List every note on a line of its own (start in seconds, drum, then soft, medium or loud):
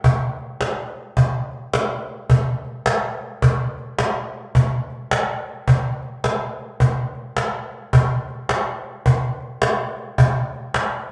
0.04 cajon bass loud
0.39 cajon slap soft
0.61 cajon slap loud
0.96 cajon slap soft
1.17 cajon bass loud
1.52 cajon slap soft
1.73 cajon slap loud
2.08 cajon slap soft
2.30 cajon bass loud
2.65 cajon slap soft
2.86 cajon slap loud
3.21 cajon slap soft
3.42 cajon bass loud
3.77 cajon slap soft
3.99 cajon slap loud
4.34 cajon slap soft
4.55 cajon bass loud
4.90 cajon slap soft
5.11 cajon slap loud
5.47 cajon slap soft
5.68 cajon bass loud
6.03 cajon slap soft
6.24 cajon slap loud
6.59 cajon slap soft
6.80 cajon bass loud
7.15 cajon slap soft
7.37 cajon slap loud
7.72 cajon slap soft
7.93 cajon bass loud
8.29 cajon slap soft
8.49 cajon slap loud
8.84 cajon slap soft
9.06 cajon bass loud
9.41 cajon slap soft
9.62 cajon slap loud
9.97 cajon slap soft
10.18 cajon bass loud
10.53 cajon slap soft
10.74 cajon slap loud